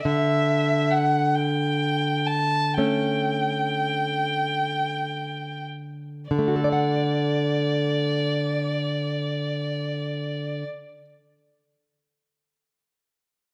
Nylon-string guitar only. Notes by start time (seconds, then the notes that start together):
0.05 D3
2.78 A3 C#4
6.31 D3
6.39 A3
6.48 F#4
6.56 A4
6.64 D5
6.72 F#5